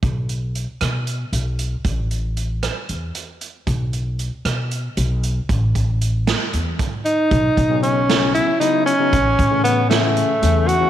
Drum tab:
HH |xxxxxxx|xxxxxxx|xxxxxxx|xxxxxxx|
SD |---r---|---r---|---r---|---o---|
BD |o------|o------|o------|oo---o-|

HH |xxxxxxx|xxxxxxx|
SD |---o---|---o---|
BD |oo-----|oo-----|